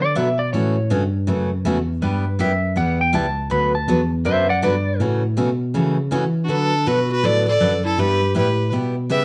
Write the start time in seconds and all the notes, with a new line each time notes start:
Already playing: D3
0.02 D5
0.15 B2 D3 F#3 B3 F#4 B4 E5
0.39 D5
0.53 A2 C#3 E3 A3 C#4 F#4 C#5
0.90 G2 C#3 E3 A3 C#4 F#4
1.27 F#2 C#3 E3 A3 C#4 F#4
1.65 E2 C#3 E3 A3 C#4 F#4
2.02 G2 G3 B3 E4 G4 B4
2.39 F#2 G3 B3 E4 G4 E5
2.76 E2 G3 B3 E4 G4 F#5
3.01 G5
3.13 C#2 G3 B3 E4 G4 A5
3.50 D2 D3 F#3 B3 F#4 B4 B5
3.75 A5
3.88 E2 D3 F#3 B3 F#4 B4
4.25 F#2 D3 F#3 B3 F#4 B4 C5 E5
4.49 D5 F#5
4.62 G2 D3 F#3 B3 F#4 B4 D5
5.00 A2 C#3 E3 A3 C#4 F#4
5.37 B2 C#3 E3 A3 C#4 F#4
5.74 C#3 E3 A3 C#4 F#4
6.11 C#3 E3 A3 C#4 F#4
6.44 D4 F#4
6.48 D3 F#3 B3 D4 F#4 A4 B4
6.86 B2 D3 F#3 B3 F#4 B4
7.11 F#4 B4
7.23 A2 D3 F#3 B3 F#4 A4 B4 D5
7.48 A2 A4 D5
7.60 F#2 D3 F#3 B3 F#4 B4
7.85 E4 A4
7.98 G2 G3 B3 E4 G4 B4
8.35 A2 G3 B3 E4 G4 B4
8.72 B2 G3 B3 E4 G4
9.09 C#3 G3 B3 E4 G4 B4 E5